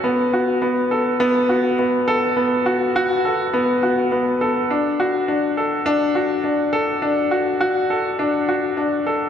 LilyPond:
\new Staff \with { instrumentName = "Grand piano" } { \time 4/4 \key b \minor \tempo 4 = 103 b8 fis'8 b8 a'8 b8 fis'8 b8 a'8 | b8 fis'8 fis'8 a'8 b8 fis'8 b8 a'8 | d'8 fis'8 d'8 a'8 d'8 fis'8 d'8 a'8 | d'8 fis'8 fis'8 a'8 d'8 fis'8 d'8 a'8 | }